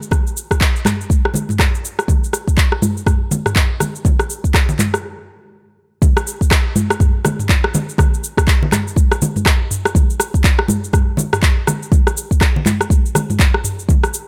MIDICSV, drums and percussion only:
0, 0, Header, 1, 2, 480
1, 0, Start_track
1, 0, Tempo, 491803
1, 114, Time_signature, 4, 2, 24, 8
1, 13935, End_track
2, 0, Start_track
2, 0, Title_t, "Drums"
2, 24, Note_on_c, 9, 69, 41
2, 108, Note_on_c, 9, 64, 79
2, 110, Note_on_c, 9, 63, 54
2, 113, Note_on_c, 9, 36, 119
2, 115, Note_on_c, 9, 37, 78
2, 120, Note_off_c, 9, 69, 0
2, 120, Note_on_c, 9, 69, 53
2, 206, Note_off_c, 9, 64, 0
2, 207, Note_off_c, 9, 63, 0
2, 211, Note_off_c, 9, 36, 0
2, 213, Note_off_c, 9, 37, 0
2, 217, Note_off_c, 9, 69, 0
2, 263, Note_on_c, 9, 69, 36
2, 360, Note_off_c, 9, 69, 0
2, 360, Note_on_c, 9, 69, 94
2, 457, Note_off_c, 9, 69, 0
2, 496, Note_on_c, 9, 36, 78
2, 499, Note_on_c, 9, 37, 90
2, 504, Note_on_c, 9, 69, 39
2, 593, Note_off_c, 9, 36, 0
2, 593, Note_on_c, 9, 36, 115
2, 596, Note_on_c, 9, 39, 101
2, 597, Note_off_c, 9, 37, 0
2, 601, Note_off_c, 9, 69, 0
2, 601, Note_on_c, 9, 69, 50
2, 690, Note_off_c, 9, 36, 0
2, 694, Note_off_c, 9, 39, 0
2, 698, Note_off_c, 9, 69, 0
2, 743, Note_on_c, 9, 69, 35
2, 830, Note_on_c, 9, 63, 105
2, 838, Note_on_c, 9, 37, 75
2, 838, Note_on_c, 9, 39, 52
2, 838, Note_on_c, 9, 45, 99
2, 841, Note_off_c, 9, 69, 0
2, 843, Note_on_c, 9, 69, 91
2, 928, Note_off_c, 9, 63, 0
2, 936, Note_off_c, 9, 37, 0
2, 936, Note_off_c, 9, 39, 0
2, 936, Note_off_c, 9, 45, 0
2, 940, Note_off_c, 9, 69, 0
2, 987, Note_on_c, 9, 69, 38
2, 1070, Note_on_c, 9, 63, 65
2, 1073, Note_on_c, 9, 36, 115
2, 1083, Note_off_c, 9, 69, 0
2, 1083, Note_on_c, 9, 69, 50
2, 1168, Note_off_c, 9, 63, 0
2, 1171, Note_off_c, 9, 36, 0
2, 1181, Note_off_c, 9, 69, 0
2, 1222, Note_on_c, 9, 37, 85
2, 1305, Note_on_c, 9, 63, 70
2, 1310, Note_on_c, 9, 64, 86
2, 1320, Note_off_c, 9, 37, 0
2, 1323, Note_on_c, 9, 69, 94
2, 1402, Note_off_c, 9, 63, 0
2, 1408, Note_off_c, 9, 64, 0
2, 1420, Note_off_c, 9, 69, 0
2, 1454, Note_on_c, 9, 63, 59
2, 1463, Note_on_c, 9, 45, 94
2, 1468, Note_on_c, 9, 69, 38
2, 1551, Note_off_c, 9, 63, 0
2, 1553, Note_on_c, 9, 36, 111
2, 1557, Note_on_c, 9, 37, 77
2, 1557, Note_on_c, 9, 39, 102
2, 1561, Note_off_c, 9, 45, 0
2, 1562, Note_off_c, 9, 69, 0
2, 1562, Note_on_c, 9, 69, 52
2, 1651, Note_off_c, 9, 36, 0
2, 1655, Note_off_c, 9, 37, 0
2, 1655, Note_off_c, 9, 39, 0
2, 1659, Note_off_c, 9, 69, 0
2, 1707, Note_on_c, 9, 69, 34
2, 1804, Note_off_c, 9, 69, 0
2, 1804, Note_on_c, 9, 69, 88
2, 1902, Note_off_c, 9, 69, 0
2, 1941, Note_on_c, 9, 37, 89
2, 1945, Note_on_c, 9, 69, 37
2, 2032, Note_on_c, 9, 36, 117
2, 2033, Note_on_c, 9, 63, 57
2, 2038, Note_off_c, 9, 37, 0
2, 2038, Note_on_c, 9, 64, 89
2, 2042, Note_off_c, 9, 69, 0
2, 2042, Note_on_c, 9, 69, 49
2, 2130, Note_off_c, 9, 36, 0
2, 2131, Note_off_c, 9, 63, 0
2, 2136, Note_off_c, 9, 64, 0
2, 2140, Note_off_c, 9, 69, 0
2, 2185, Note_on_c, 9, 69, 36
2, 2277, Note_on_c, 9, 37, 75
2, 2281, Note_off_c, 9, 69, 0
2, 2281, Note_on_c, 9, 69, 92
2, 2374, Note_off_c, 9, 37, 0
2, 2379, Note_off_c, 9, 69, 0
2, 2416, Note_on_c, 9, 36, 75
2, 2425, Note_on_c, 9, 69, 38
2, 2512, Note_off_c, 9, 36, 0
2, 2512, Note_on_c, 9, 36, 123
2, 2516, Note_on_c, 9, 39, 107
2, 2520, Note_off_c, 9, 69, 0
2, 2520, Note_on_c, 9, 69, 49
2, 2610, Note_off_c, 9, 36, 0
2, 2613, Note_off_c, 9, 39, 0
2, 2618, Note_off_c, 9, 69, 0
2, 2656, Note_on_c, 9, 37, 91
2, 2754, Note_off_c, 9, 37, 0
2, 2754, Note_on_c, 9, 45, 102
2, 2755, Note_on_c, 9, 63, 99
2, 2758, Note_on_c, 9, 69, 93
2, 2851, Note_off_c, 9, 45, 0
2, 2853, Note_off_c, 9, 63, 0
2, 2856, Note_off_c, 9, 69, 0
2, 2901, Note_on_c, 9, 69, 37
2, 2991, Note_on_c, 9, 36, 120
2, 2993, Note_on_c, 9, 63, 67
2, 2994, Note_on_c, 9, 37, 78
2, 2994, Note_on_c, 9, 45, 84
2, 2999, Note_off_c, 9, 69, 0
2, 2999, Note_on_c, 9, 69, 52
2, 3089, Note_off_c, 9, 36, 0
2, 3091, Note_off_c, 9, 37, 0
2, 3091, Note_off_c, 9, 45, 0
2, 3091, Note_off_c, 9, 63, 0
2, 3096, Note_off_c, 9, 69, 0
2, 3233, Note_on_c, 9, 64, 95
2, 3235, Note_on_c, 9, 69, 93
2, 3239, Note_on_c, 9, 63, 64
2, 3331, Note_off_c, 9, 64, 0
2, 3333, Note_off_c, 9, 69, 0
2, 3336, Note_off_c, 9, 63, 0
2, 3376, Note_on_c, 9, 37, 89
2, 3376, Note_on_c, 9, 45, 98
2, 3380, Note_on_c, 9, 69, 35
2, 3471, Note_on_c, 9, 36, 115
2, 3473, Note_off_c, 9, 37, 0
2, 3473, Note_off_c, 9, 45, 0
2, 3473, Note_on_c, 9, 39, 105
2, 3478, Note_off_c, 9, 69, 0
2, 3478, Note_on_c, 9, 69, 51
2, 3569, Note_off_c, 9, 36, 0
2, 3571, Note_off_c, 9, 39, 0
2, 3576, Note_off_c, 9, 69, 0
2, 3712, Note_on_c, 9, 37, 76
2, 3715, Note_on_c, 9, 64, 84
2, 3717, Note_on_c, 9, 69, 91
2, 3725, Note_on_c, 9, 63, 57
2, 3810, Note_off_c, 9, 37, 0
2, 3812, Note_off_c, 9, 64, 0
2, 3814, Note_off_c, 9, 69, 0
2, 3822, Note_off_c, 9, 63, 0
2, 3859, Note_on_c, 9, 69, 37
2, 3951, Note_on_c, 9, 36, 121
2, 3957, Note_off_c, 9, 69, 0
2, 3957, Note_on_c, 9, 69, 50
2, 3962, Note_on_c, 9, 63, 54
2, 3963, Note_on_c, 9, 64, 97
2, 4049, Note_off_c, 9, 36, 0
2, 4054, Note_off_c, 9, 69, 0
2, 4060, Note_off_c, 9, 63, 0
2, 4061, Note_off_c, 9, 64, 0
2, 4095, Note_on_c, 9, 37, 95
2, 4099, Note_on_c, 9, 69, 35
2, 4192, Note_off_c, 9, 37, 0
2, 4196, Note_off_c, 9, 69, 0
2, 4196, Note_on_c, 9, 69, 89
2, 4293, Note_off_c, 9, 69, 0
2, 4335, Note_on_c, 9, 36, 79
2, 4341, Note_on_c, 9, 69, 39
2, 4431, Note_off_c, 9, 36, 0
2, 4431, Note_on_c, 9, 36, 118
2, 4435, Note_on_c, 9, 37, 81
2, 4435, Note_on_c, 9, 39, 109
2, 4439, Note_off_c, 9, 69, 0
2, 4440, Note_on_c, 9, 69, 51
2, 4529, Note_off_c, 9, 36, 0
2, 4533, Note_off_c, 9, 37, 0
2, 4533, Note_off_c, 9, 39, 0
2, 4538, Note_off_c, 9, 69, 0
2, 4576, Note_on_c, 9, 64, 85
2, 4580, Note_on_c, 9, 69, 35
2, 4674, Note_off_c, 9, 64, 0
2, 4675, Note_on_c, 9, 39, 54
2, 4675, Note_on_c, 9, 45, 99
2, 4675, Note_on_c, 9, 63, 94
2, 4678, Note_off_c, 9, 69, 0
2, 4680, Note_on_c, 9, 69, 95
2, 4772, Note_off_c, 9, 39, 0
2, 4772, Note_off_c, 9, 45, 0
2, 4773, Note_off_c, 9, 63, 0
2, 4777, Note_off_c, 9, 69, 0
2, 4820, Note_on_c, 9, 37, 94
2, 4824, Note_on_c, 9, 69, 37
2, 4917, Note_off_c, 9, 37, 0
2, 4922, Note_off_c, 9, 69, 0
2, 5874, Note_on_c, 9, 36, 124
2, 5875, Note_on_c, 9, 63, 63
2, 5877, Note_on_c, 9, 64, 92
2, 5880, Note_on_c, 9, 69, 51
2, 5971, Note_off_c, 9, 36, 0
2, 5973, Note_off_c, 9, 63, 0
2, 5975, Note_off_c, 9, 64, 0
2, 5977, Note_off_c, 9, 69, 0
2, 6019, Note_on_c, 9, 37, 97
2, 6024, Note_on_c, 9, 69, 36
2, 6117, Note_off_c, 9, 37, 0
2, 6121, Note_off_c, 9, 69, 0
2, 6121, Note_on_c, 9, 69, 97
2, 6218, Note_off_c, 9, 69, 0
2, 6257, Note_on_c, 9, 36, 80
2, 6267, Note_on_c, 9, 69, 41
2, 6353, Note_off_c, 9, 36, 0
2, 6353, Note_on_c, 9, 36, 121
2, 6356, Note_on_c, 9, 37, 85
2, 6356, Note_on_c, 9, 39, 105
2, 6361, Note_off_c, 9, 69, 0
2, 6361, Note_on_c, 9, 69, 55
2, 6451, Note_off_c, 9, 36, 0
2, 6454, Note_off_c, 9, 37, 0
2, 6454, Note_off_c, 9, 39, 0
2, 6459, Note_off_c, 9, 69, 0
2, 6593, Note_on_c, 9, 45, 97
2, 6595, Note_on_c, 9, 63, 96
2, 6598, Note_on_c, 9, 69, 94
2, 6691, Note_off_c, 9, 45, 0
2, 6692, Note_off_c, 9, 63, 0
2, 6696, Note_off_c, 9, 69, 0
2, 6739, Note_on_c, 9, 37, 101
2, 6743, Note_on_c, 9, 69, 41
2, 6833, Note_on_c, 9, 36, 121
2, 6834, Note_on_c, 9, 45, 83
2, 6835, Note_on_c, 9, 63, 64
2, 6836, Note_off_c, 9, 37, 0
2, 6839, Note_off_c, 9, 69, 0
2, 6839, Note_on_c, 9, 69, 54
2, 6931, Note_off_c, 9, 36, 0
2, 6932, Note_off_c, 9, 45, 0
2, 6932, Note_off_c, 9, 63, 0
2, 6936, Note_off_c, 9, 69, 0
2, 7073, Note_on_c, 9, 37, 90
2, 7077, Note_on_c, 9, 69, 96
2, 7078, Note_on_c, 9, 64, 110
2, 7084, Note_on_c, 9, 63, 74
2, 7170, Note_off_c, 9, 37, 0
2, 7175, Note_off_c, 9, 69, 0
2, 7176, Note_off_c, 9, 64, 0
2, 7182, Note_off_c, 9, 63, 0
2, 7216, Note_on_c, 9, 45, 93
2, 7221, Note_on_c, 9, 69, 39
2, 7312, Note_on_c, 9, 39, 107
2, 7313, Note_on_c, 9, 36, 122
2, 7314, Note_off_c, 9, 45, 0
2, 7317, Note_off_c, 9, 69, 0
2, 7317, Note_on_c, 9, 69, 54
2, 7410, Note_off_c, 9, 36, 0
2, 7410, Note_off_c, 9, 39, 0
2, 7415, Note_off_c, 9, 69, 0
2, 7458, Note_on_c, 9, 37, 101
2, 7556, Note_off_c, 9, 37, 0
2, 7557, Note_on_c, 9, 63, 59
2, 7558, Note_on_c, 9, 69, 91
2, 7561, Note_on_c, 9, 64, 102
2, 7655, Note_off_c, 9, 63, 0
2, 7655, Note_off_c, 9, 69, 0
2, 7658, Note_off_c, 9, 64, 0
2, 7702, Note_on_c, 9, 69, 40
2, 7791, Note_on_c, 9, 36, 121
2, 7796, Note_on_c, 9, 64, 106
2, 7798, Note_on_c, 9, 37, 86
2, 7800, Note_off_c, 9, 69, 0
2, 7801, Note_on_c, 9, 63, 62
2, 7802, Note_on_c, 9, 69, 54
2, 7889, Note_off_c, 9, 36, 0
2, 7894, Note_off_c, 9, 64, 0
2, 7895, Note_off_c, 9, 37, 0
2, 7898, Note_off_c, 9, 63, 0
2, 7900, Note_off_c, 9, 69, 0
2, 7946, Note_on_c, 9, 69, 38
2, 8041, Note_off_c, 9, 69, 0
2, 8041, Note_on_c, 9, 69, 97
2, 8138, Note_off_c, 9, 69, 0
2, 8174, Note_on_c, 9, 36, 90
2, 8179, Note_on_c, 9, 37, 101
2, 8183, Note_on_c, 9, 69, 42
2, 8270, Note_off_c, 9, 36, 0
2, 8270, Note_on_c, 9, 36, 126
2, 8275, Note_on_c, 9, 39, 105
2, 8276, Note_off_c, 9, 37, 0
2, 8280, Note_off_c, 9, 69, 0
2, 8280, Note_on_c, 9, 69, 58
2, 8368, Note_off_c, 9, 36, 0
2, 8373, Note_off_c, 9, 39, 0
2, 8377, Note_off_c, 9, 69, 0
2, 8419, Note_on_c, 9, 64, 88
2, 8511, Note_on_c, 9, 63, 101
2, 8514, Note_on_c, 9, 37, 86
2, 8514, Note_on_c, 9, 39, 55
2, 8514, Note_on_c, 9, 45, 94
2, 8517, Note_off_c, 9, 64, 0
2, 8519, Note_on_c, 9, 69, 100
2, 8608, Note_off_c, 9, 63, 0
2, 8612, Note_off_c, 9, 37, 0
2, 8612, Note_off_c, 9, 39, 0
2, 8612, Note_off_c, 9, 45, 0
2, 8617, Note_off_c, 9, 69, 0
2, 8664, Note_on_c, 9, 69, 42
2, 8746, Note_on_c, 9, 63, 66
2, 8750, Note_on_c, 9, 36, 127
2, 8759, Note_off_c, 9, 69, 0
2, 8759, Note_on_c, 9, 69, 55
2, 8844, Note_off_c, 9, 63, 0
2, 8848, Note_off_c, 9, 36, 0
2, 8856, Note_off_c, 9, 69, 0
2, 8897, Note_on_c, 9, 37, 99
2, 8901, Note_on_c, 9, 69, 37
2, 8994, Note_off_c, 9, 37, 0
2, 8997, Note_off_c, 9, 69, 0
2, 8997, Note_on_c, 9, 63, 71
2, 8997, Note_on_c, 9, 69, 104
2, 8998, Note_on_c, 9, 64, 100
2, 9095, Note_off_c, 9, 63, 0
2, 9095, Note_off_c, 9, 69, 0
2, 9096, Note_off_c, 9, 64, 0
2, 9135, Note_on_c, 9, 45, 84
2, 9138, Note_on_c, 9, 63, 73
2, 9139, Note_on_c, 9, 69, 41
2, 9230, Note_on_c, 9, 36, 126
2, 9232, Note_off_c, 9, 45, 0
2, 9234, Note_on_c, 9, 37, 87
2, 9234, Note_on_c, 9, 39, 106
2, 9236, Note_off_c, 9, 63, 0
2, 9237, Note_off_c, 9, 69, 0
2, 9239, Note_on_c, 9, 69, 60
2, 9328, Note_off_c, 9, 36, 0
2, 9332, Note_off_c, 9, 37, 0
2, 9332, Note_off_c, 9, 39, 0
2, 9336, Note_off_c, 9, 69, 0
2, 9475, Note_on_c, 9, 45, 83
2, 9480, Note_on_c, 9, 69, 95
2, 9573, Note_off_c, 9, 45, 0
2, 9577, Note_off_c, 9, 69, 0
2, 9618, Note_on_c, 9, 37, 97
2, 9623, Note_on_c, 9, 69, 44
2, 9710, Note_on_c, 9, 36, 127
2, 9715, Note_off_c, 9, 37, 0
2, 9715, Note_on_c, 9, 63, 61
2, 9717, Note_on_c, 9, 64, 84
2, 9719, Note_off_c, 9, 69, 0
2, 9719, Note_on_c, 9, 69, 56
2, 9808, Note_off_c, 9, 36, 0
2, 9813, Note_off_c, 9, 63, 0
2, 9815, Note_off_c, 9, 64, 0
2, 9817, Note_off_c, 9, 69, 0
2, 9860, Note_on_c, 9, 69, 39
2, 9953, Note_on_c, 9, 37, 88
2, 9957, Note_off_c, 9, 69, 0
2, 9957, Note_on_c, 9, 69, 102
2, 10050, Note_off_c, 9, 37, 0
2, 10055, Note_off_c, 9, 69, 0
2, 10094, Note_on_c, 9, 36, 84
2, 10100, Note_on_c, 9, 69, 43
2, 10191, Note_off_c, 9, 36, 0
2, 10191, Note_on_c, 9, 36, 127
2, 10191, Note_on_c, 9, 39, 104
2, 10195, Note_off_c, 9, 69, 0
2, 10195, Note_on_c, 9, 69, 57
2, 10288, Note_off_c, 9, 39, 0
2, 10289, Note_off_c, 9, 36, 0
2, 10293, Note_off_c, 9, 69, 0
2, 10333, Note_on_c, 9, 37, 97
2, 10428, Note_on_c, 9, 63, 115
2, 10431, Note_off_c, 9, 37, 0
2, 10434, Note_on_c, 9, 45, 88
2, 10439, Note_on_c, 9, 69, 106
2, 10525, Note_off_c, 9, 63, 0
2, 10532, Note_off_c, 9, 45, 0
2, 10536, Note_off_c, 9, 69, 0
2, 10582, Note_on_c, 9, 69, 42
2, 10668, Note_on_c, 9, 63, 73
2, 10671, Note_on_c, 9, 36, 127
2, 10674, Note_on_c, 9, 37, 82
2, 10674, Note_on_c, 9, 45, 78
2, 10678, Note_off_c, 9, 69, 0
2, 10678, Note_on_c, 9, 69, 55
2, 10766, Note_off_c, 9, 63, 0
2, 10769, Note_off_c, 9, 36, 0
2, 10771, Note_off_c, 9, 37, 0
2, 10771, Note_off_c, 9, 45, 0
2, 10776, Note_off_c, 9, 69, 0
2, 10903, Note_on_c, 9, 64, 95
2, 10911, Note_on_c, 9, 63, 67
2, 10918, Note_on_c, 9, 69, 97
2, 11001, Note_off_c, 9, 64, 0
2, 11008, Note_off_c, 9, 63, 0
2, 11016, Note_off_c, 9, 69, 0
2, 11058, Note_on_c, 9, 37, 96
2, 11058, Note_on_c, 9, 45, 83
2, 11062, Note_on_c, 9, 69, 39
2, 11151, Note_on_c, 9, 36, 127
2, 11153, Note_on_c, 9, 39, 100
2, 11155, Note_off_c, 9, 37, 0
2, 11155, Note_off_c, 9, 45, 0
2, 11157, Note_off_c, 9, 69, 0
2, 11157, Note_on_c, 9, 69, 55
2, 11249, Note_off_c, 9, 36, 0
2, 11250, Note_off_c, 9, 39, 0
2, 11255, Note_off_c, 9, 69, 0
2, 11394, Note_on_c, 9, 37, 82
2, 11394, Note_on_c, 9, 63, 63
2, 11398, Note_on_c, 9, 64, 96
2, 11398, Note_on_c, 9, 69, 98
2, 11491, Note_off_c, 9, 37, 0
2, 11491, Note_off_c, 9, 63, 0
2, 11495, Note_off_c, 9, 64, 0
2, 11496, Note_off_c, 9, 69, 0
2, 11543, Note_on_c, 9, 69, 41
2, 11630, Note_on_c, 9, 63, 65
2, 11631, Note_on_c, 9, 36, 127
2, 11634, Note_on_c, 9, 64, 84
2, 11640, Note_off_c, 9, 69, 0
2, 11640, Note_on_c, 9, 69, 54
2, 11728, Note_off_c, 9, 63, 0
2, 11729, Note_off_c, 9, 36, 0
2, 11732, Note_off_c, 9, 64, 0
2, 11737, Note_off_c, 9, 69, 0
2, 11779, Note_on_c, 9, 37, 91
2, 11784, Note_on_c, 9, 69, 38
2, 11877, Note_off_c, 9, 37, 0
2, 11879, Note_off_c, 9, 69, 0
2, 11879, Note_on_c, 9, 69, 99
2, 11976, Note_off_c, 9, 69, 0
2, 12015, Note_on_c, 9, 36, 87
2, 12022, Note_on_c, 9, 69, 44
2, 12112, Note_off_c, 9, 36, 0
2, 12112, Note_on_c, 9, 36, 127
2, 12114, Note_on_c, 9, 37, 81
2, 12114, Note_on_c, 9, 39, 98
2, 12119, Note_off_c, 9, 69, 0
2, 12119, Note_on_c, 9, 69, 58
2, 12209, Note_off_c, 9, 36, 0
2, 12211, Note_off_c, 9, 37, 0
2, 12211, Note_off_c, 9, 39, 0
2, 12216, Note_off_c, 9, 69, 0
2, 12261, Note_on_c, 9, 64, 75
2, 12354, Note_on_c, 9, 63, 116
2, 12356, Note_on_c, 9, 39, 53
2, 12356, Note_on_c, 9, 45, 94
2, 12358, Note_off_c, 9, 64, 0
2, 12361, Note_on_c, 9, 69, 105
2, 12452, Note_off_c, 9, 63, 0
2, 12454, Note_off_c, 9, 39, 0
2, 12454, Note_off_c, 9, 45, 0
2, 12458, Note_off_c, 9, 69, 0
2, 12500, Note_on_c, 9, 37, 92
2, 12504, Note_on_c, 9, 69, 41
2, 12592, Note_on_c, 9, 36, 127
2, 12597, Note_off_c, 9, 37, 0
2, 12601, Note_on_c, 9, 63, 73
2, 12602, Note_off_c, 9, 69, 0
2, 12602, Note_on_c, 9, 69, 57
2, 12690, Note_off_c, 9, 36, 0
2, 12698, Note_off_c, 9, 63, 0
2, 12699, Note_off_c, 9, 69, 0
2, 12745, Note_on_c, 9, 69, 35
2, 12835, Note_on_c, 9, 64, 105
2, 12836, Note_on_c, 9, 37, 81
2, 12841, Note_off_c, 9, 69, 0
2, 12841, Note_on_c, 9, 69, 99
2, 12844, Note_on_c, 9, 63, 68
2, 12932, Note_off_c, 9, 64, 0
2, 12934, Note_off_c, 9, 37, 0
2, 12938, Note_off_c, 9, 69, 0
2, 12941, Note_off_c, 9, 63, 0
2, 12978, Note_on_c, 9, 45, 87
2, 12983, Note_on_c, 9, 69, 41
2, 12986, Note_on_c, 9, 63, 69
2, 13072, Note_on_c, 9, 36, 122
2, 13076, Note_off_c, 9, 45, 0
2, 13076, Note_on_c, 9, 39, 100
2, 13080, Note_off_c, 9, 69, 0
2, 13081, Note_on_c, 9, 69, 58
2, 13083, Note_off_c, 9, 63, 0
2, 13170, Note_off_c, 9, 36, 0
2, 13173, Note_off_c, 9, 39, 0
2, 13178, Note_off_c, 9, 69, 0
2, 13218, Note_on_c, 9, 37, 89
2, 13314, Note_on_c, 9, 45, 82
2, 13316, Note_off_c, 9, 37, 0
2, 13318, Note_on_c, 9, 69, 98
2, 13411, Note_off_c, 9, 45, 0
2, 13416, Note_off_c, 9, 69, 0
2, 13462, Note_on_c, 9, 69, 42
2, 13553, Note_on_c, 9, 36, 116
2, 13557, Note_on_c, 9, 63, 62
2, 13560, Note_off_c, 9, 69, 0
2, 13560, Note_on_c, 9, 69, 53
2, 13569, Note_on_c, 9, 64, 94
2, 13651, Note_off_c, 9, 36, 0
2, 13655, Note_off_c, 9, 63, 0
2, 13658, Note_off_c, 9, 69, 0
2, 13666, Note_off_c, 9, 64, 0
2, 13698, Note_on_c, 9, 37, 91
2, 13703, Note_on_c, 9, 69, 35
2, 13796, Note_off_c, 9, 37, 0
2, 13799, Note_off_c, 9, 69, 0
2, 13799, Note_on_c, 9, 69, 100
2, 13896, Note_off_c, 9, 69, 0
2, 13935, End_track
0, 0, End_of_file